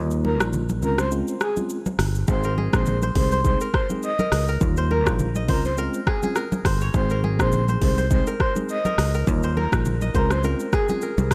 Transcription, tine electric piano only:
Already playing: G3 A#3 D#4 F4
0.40 G3 A#3 D#4 F4
0.82 G#3 C4 C#4 F4
1.11 G#3 C4 C#4 F4
1.56 G#3 C4 C#4 F4
2.28 G#3 C4 D#4 G#4
2.73 G#3 C4 D#4 G#4
3.15 G#3 C4 D#4 G#4
3.44 G#3 C4 D#4 G#4
3.89 G#3 C4 D#4 G#4
4.61 G3 A#3 D#4 F4
5.06 G3 A#3 D#4 F4
5.48 G#3 C4 C#4 F4
5.77 G#3 C4 C#4 F4
6.22 G#3 C4 C#4 F4
6.94 G#3 C4 D#4 G#4
7.39 G#3 C4 D#4 G#4
7.81 G#3 C4 D#4 G#4
8.10 G#3 C4 D#4 G#4
8.55 G#3 C4 D#4 G#4
9.27 G3 A#3 D#4 F4
9.72 G3 A#3 D#4 F4
10.14 G#3 C4 C#4 F4
10.43 G#3 C4 C#4 F4
10.89 G#3 C4 C#4 F4

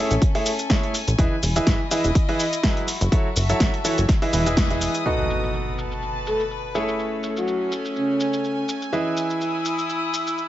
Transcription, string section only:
Already playing: C#4 A4 G#5
1.19 E4
1.65 D#5
2.88 F#4
3.34 E5
3.43 A5
4.09 E4
4.42 D#6
4.53 G#5
5.28 B4
5.82 A5
6.75 C#4
7.15 A3
7.57 G#5
8.93 E4
9.41 D#6

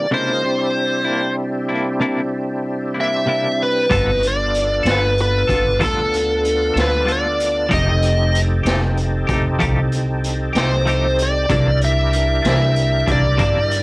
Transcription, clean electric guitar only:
0.11 C3 A#3 D4 E4
1.05 A#3 D4 E4
1.69 A#3 D4 E4
2.00 C3 A#3 D4 E4
2.94 A#3 D4 E4
3.26 C3 A#3 D4 E4
3.90 G3 B3 F4 A4
4.83 B3 F4 A4
5.48 B3 F4 A4
5.79 G3 B3 F4 A4
6.74 B3 F4 A4
7.05 G3 B3 F4 A4
7.69 F3 A3 D#4 G4
8.63 A3 D#4 G4
9.27 A3 D#4 G4
9.59 F3 A3 D#4 G4
10.53 A3 D#4 G4
10.86 F3 A3 D#4 G4
11.49 C3 E3 A#3 D4
12.42 E3 A#3 D4
13.07 E3 A#3 D4
13.38 C3 E3 A#3 D4

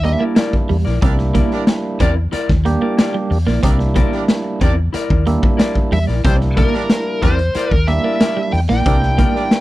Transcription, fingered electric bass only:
Already playing: D#2
0.70 E2
0.87 A#1
1.02 C2
2.00 E2
2.33 muted fingered electric bass stroke
2.49 D#2
3.31 E2
3.47 A#1
3.63 C2
4.61 E2
4.94 muted fingered electric bass stroke
5.10 D#2
5.92 E2
6.08 A#1
6.25 C2
7.22 E2
7.55 muted fingered electric bass stroke
7.71 D#2
8.53 E2
8.69 A#1
8.86 C2

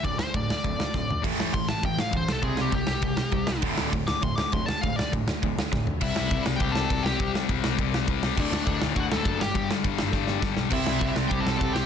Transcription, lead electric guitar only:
0.04 D5
0.19 C5
0.36 D5
1.54 C6
1.68 A5
1.85 G5
2.00 F5
2.17 C5
2.32 A4
2.44 G#4
2.61 G4
2.75 G4
4.07 D6
4.23 C6
4.35 D6
4.53 C6
4.66 A5
4.81 F5
4.96 D5
6.02 E4 E5
6.56 G5
6.61 G4
6.72 A5
6.76 A4
7.03 G4 G5
8.39 D4 D5
8.97 F#4 F#5
9.13 A4 A5
9.40 G4 G5
10.73 E4 E5
11.28 G4 G5
11.40 A5
11.45 A4
11.73 G4 G5

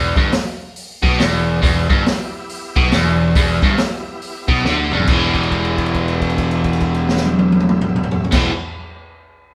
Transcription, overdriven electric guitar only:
Already playing: E2
0.17 G2
1.02 B2
1.19 E2
1.62 E2
1.90 G2
2.76 B2
2.93 E2
3.36 E2
3.63 G2
4.48 B2
4.65 D3
4.93 E2
5.08 E2 B2 E3
8.31 E2 B2
8.36 E3

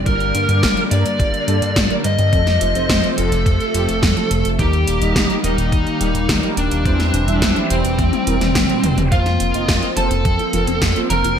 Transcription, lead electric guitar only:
0.06 A#4
0.91 D5
2.05 D#5
3.18 A4
4.59 G4
5.44 D#4
6.57 D4
7.70 C4
9.12 F4
9.97 A4
11.10 A#4

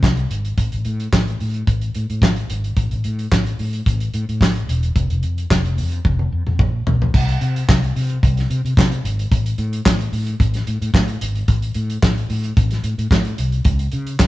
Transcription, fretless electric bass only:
0.03 C2
0.31 G#1
0.58 A1
0.73 A1
0.85 A2
1.13 A1
1.41 A2
1.68 A1
1.96 A2
2.10 A2
2.22 A1
2.50 G#1
2.77 A1
2.91 A1
3.05 A2
3.32 A1
3.59 A2
3.86 A1
4.14 A2
4.29 A2
4.41 A1
4.69 E1
4.96 F1
5.10 F1
5.23 F2
5.51 F1
5.77 F2
6.05 F1
6.32 F2
6.47 F2
6.59 A#1
6.87 B1
7.14 C2
7.41 C3
7.69 C2
7.96 C3
8.23 C2
8.50 C3
8.65 C3
8.77 C3
9.04 G#1
9.31 A1
9.58 A2
9.86 A1
10.12 A2
10.40 A1
10.68 A2
10.81 A2
10.94 A2
11.21 G#1
11.48 A1
11.75 A2
12.03 A1
12.30 A2
12.57 A1
12.84 A2
12.98 A2
13.11 A2
13.38 C2
13.65 C#2
13.93 C#3
14.20 C#2

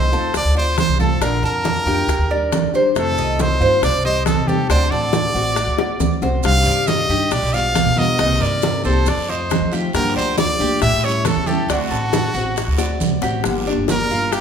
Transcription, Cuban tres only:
Already playing: D#5
0.13 A4
0.57 D5
1.00 A4
1.22 D4
1.44 A5
1.87 G4
2.31 D5
2.75 C5
3.18 D#5
3.62 C5
4.05 D#5
4.49 A4
4.71 D4
4.92 A4
5.36 F#4
5.79 D5
6.22 C5
6.66 D5
7.10 G4
7.54 D5
7.97 A#4
8.19 D#4
8.41 A#4
8.85 A4
9.30 D#5
9.73 G4
10.16 D5
10.60 G4
11.04 C#5
11.47 A4
11.70 D4
11.91 A4
12.35 F#4
12.78 D5
13.23 G4
13.67 D4
14.11 F4

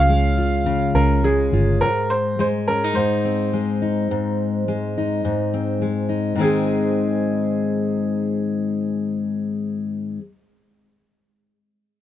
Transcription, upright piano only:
Already playing: F5
0.95 A#4
1.24 G#4
1.81 A#4
2.10 C5
2.40 C5
2.68 A#4
2.95 C5
6.41 G#4

